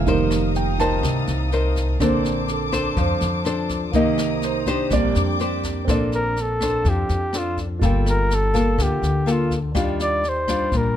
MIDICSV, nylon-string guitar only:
0, 0, Header, 1, 2, 480
1, 0, Start_track
1, 0, Key_signature, -2, "major"
1, 0, Tempo, 484653
1, 64, Time_signature, 4, 2, 24, 8
1, 10861, End_track
2, 0, Start_track
2, 0, Title_t, "Nylon-string guitar"
2, 0, Program_c, 0, 24
2, 70, Note_on_c, 0, 53, 54
2, 75, Note_on_c, 0, 63, 55
2, 78, Note_on_c, 0, 70, 51
2, 82, Note_on_c, 0, 72, 68
2, 750, Note_off_c, 0, 70, 0
2, 751, Note_off_c, 0, 63, 0
2, 754, Note_off_c, 0, 72, 0
2, 790, Note_on_c, 0, 63, 69
2, 796, Note_on_c, 0, 70, 64
2, 800, Note_on_c, 0, 72, 73
2, 1003, Note_off_c, 0, 53, 0
2, 1029, Note_on_c, 0, 48, 55
2, 1468, Note_off_c, 0, 63, 0
2, 1471, Note_off_c, 0, 70, 0
2, 1473, Note_off_c, 0, 72, 0
2, 1509, Note_on_c, 0, 63, 52
2, 1515, Note_on_c, 0, 70, 50
2, 1521, Note_on_c, 0, 72, 58
2, 1948, Note_off_c, 0, 63, 0
2, 1950, Note_off_c, 0, 70, 0
2, 1954, Note_off_c, 0, 72, 0
2, 1962, Note_off_c, 0, 48, 0
2, 1984, Note_on_c, 0, 62, 61
2, 1986, Note_on_c, 0, 58, 59
2, 1989, Note_on_c, 0, 69, 55
2, 1993, Note_on_c, 0, 72, 56
2, 2460, Note_off_c, 0, 62, 0
2, 2462, Note_off_c, 0, 69, 0
2, 2465, Note_off_c, 0, 72, 0
2, 2696, Note_on_c, 0, 62, 63
2, 2699, Note_on_c, 0, 69, 65
2, 2703, Note_on_c, 0, 72, 80
2, 2920, Note_off_c, 0, 58, 0
2, 2941, Note_on_c, 0, 53, 59
2, 3380, Note_off_c, 0, 62, 0
2, 3382, Note_off_c, 0, 72, 0
2, 3383, Note_off_c, 0, 69, 0
2, 3422, Note_on_c, 0, 62, 55
2, 3429, Note_on_c, 0, 69, 58
2, 3430, Note_on_c, 0, 72, 58
2, 3864, Note_off_c, 0, 62, 0
2, 3866, Note_off_c, 0, 69, 0
2, 3867, Note_off_c, 0, 72, 0
2, 3877, Note_off_c, 0, 53, 0
2, 3908, Note_on_c, 0, 58, 65
2, 3914, Note_on_c, 0, 48, 56
2, 3917, Note_on_c, 0, 63, 54
2, 3921, Note_on_c, 0, 67, 63
2, 4586, Note_off_c, 0, 58, 0
2, 4590, Note_off_c, 0, 63, 0
2, 4592, Note_off_c, 0, 67, 0
2, 4623, Note_on_c, 0, 62, 62
2, 4627, Note_on_c, 0, 67, 59
2, 4632, Note_on_c, 0, 72, 77
2, 4843, Note_off_c, 0, 48, 0
2, 4862, Note_on_c, 0, 58, 62
2, 5304, Note_off_c, 0, 62, 0
2, 5305, Note_off_c, 0, 67, 0
2, 5307, Note_off_c, 0, 72, 0
2, 5347, Note_on_c, 0, 62, 61
2, 5353, Note_on_c, 0, 67, 53
2, 5356, Note_on_c, 0, 72, 60
2, 5785, Note_off_c, 0, 62, 0
2, 5788, Note_off_c, 0, 67, 0
2, 5789, Note_off_c, 0, 72, 0
2, 5797, Note_off_c, 0, 58, 0
2, 5830, Note_on_c, 0, 58, 51
2, 5833, Note_on_c, 0, 62, 56
2, 5834, Note_on_c, 0, 69, 56
2, 5837, Note_on_c, 0, 72, 58
2, 6302, Note_off_c, 0, 62, 0
2, 6304, Note_off_c, 0, 69, 0
2, 6305, Note_off_c, 0, 72, 0
2, 6557, Note_on_c, 0, 62, 60
2, 6562, Note_on_c, 0, 69, 59
2, 6563, Note_on_c, 0, 72, 75
2, 6761, Note_off_c, 0, 58, 0
2, 6791, Note_on_c, 0, 53, 55
2, 7230, Note_off_c, 0, 62, 0
2, 7231, Note_off_c, 0, 72, 0
2, 7232, Note_off_c, 0, 69, 0
2, 7274, Note_on_c, 0, 62, 53
2, 7278, Note_on_c, 0, 69, 50
2, 7285, Note_on_c, 0, 72, 53
2, 7576, Note_off_c, 0, 62, 0
2, 7578, Note_off_c, 0, 69, 0
2, 7581, Note_off_c, 0, 72, 0
2, 7721, Note_off_c, 0, 53, 0
2, 7743, Note_on_c, 0, 55, 55
2, 7747, Note_on_c, 0, 58, 51
2, 7751, Note_on_c, 0, 65, 61
2, 7752, Note_on_c, 0, 69, 53
2, 8219, Note_off_c, 0, 58, 0
2, 8220, Note_off_c, 0, 65, 0
2, 8223, Note_off_c, 0, 69, 0
2, 8456, Note_on_c, 0, 58, 60
2, 8457, Note_on_c, 0, 65, 66
2, 8465, Note_on_c, 0, 69, 65
2, 8679, Note_off_c, 0, 55, 0
2, 8700, Note_on_c, 0, 50, 54
2, 9140, Note_off_c, 0, 58, 0
2, 9140, Note_off_c, 0, 65, 0
2, 9144, Note_off_c, 0, 69, 0
2, 9171, Note_on_c, 0, 58, 54
2, 9178, Note_on_c, 0, 65, 48
2, 9183, Note_on_c, 0, 69, 62
2, 9485, Note_off_c, 0, 58, 0
2, 9488, Note_off_c, 0, 65, 0
2, 9491, Note_off_c, 0, 69, 0
2, 9636, Note_off_c, 0, 50, 0
2, 9652, Note_on_c, 0, 51, 58
2, 9655, Note_on_c, 0, 55, 59
2, 9656, Note_on_c, 0, 62, 62
2, 9662, Note_on_c, 0, 65, 58
2, 10133, Note_off_c, 0, 55, 0
2, 10136, Note_off_c, 0, 62, 0
2, 10138, Note_off_c, 0, 65, 0
2, 10381, Note_on_c, 0, 55, 62
2, 10386, Note_on_c, 0, 62, 60
2, 10391, Note_on_c, 0, 65, 69
2, 10594, Note_off_c, 0, 51, 0
2, 10627, Note_on_c, 0, 46, 52
2, 10861, Note_off_c, 0, 46, 0
2, 10861, Note_off_c, 0, 55, 0
2, 10861, Note_off_c, 0, 62, 0
2, 10861, Note_off_c, 0, 65, 0
2, 10861, End_track
0, 0, End_of_file